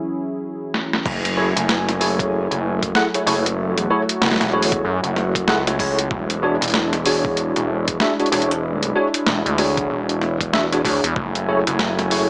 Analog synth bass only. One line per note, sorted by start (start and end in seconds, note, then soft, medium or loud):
1.06 1.53 F#1 loud
1.56 2.48 F#1 loud
2.51 2.93 F#1 loud
3.26 3.69 F#1 loud
3.69 3.88 F1 loud
4.21 4.38 F#1 loud
4.40 4.83 E1 loud
4.85 5.01 F#2 loud
5.04 5.46 F#1 loud
5.48 6.09 C#2 loud
6.11 6.59 E1 loud
6.61 7.53 E1 medium
7.56 7.98 E1 loud
8.32 8.93 E1 loud
9.27 9.43 E1 loud
9.46 9.88 D2 loud
9.90 10.83 E1 loud
10.85 11.01 D2 loud
11.04 11.14 E2 loud
11.16 11.64 F#1 loud
11.67 12.30 F#1 loud